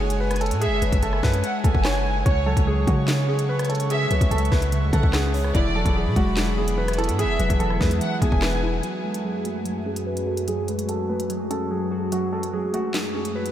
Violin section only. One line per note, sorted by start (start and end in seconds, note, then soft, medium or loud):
0.61 1.00 E5 loud
1.44 1.63 F#5 medium
1.64 2.22 G#5 medium
2.26 2.64 C#5 loud
3.90 4.29 E5 loud
4.93 5.12 F#5 medium
5.55 5.93 D5 loud
7.19 7.58 E5 loud
8.01 8.21 F#5 medium
8.22 8.80 G#5 medium